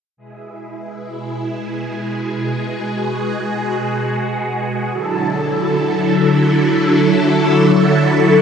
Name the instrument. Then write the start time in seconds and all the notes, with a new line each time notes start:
string machine
0.17 B2 G#3 E4 G#4
2.56 F#4
4.92 D3 F#3 E4 A4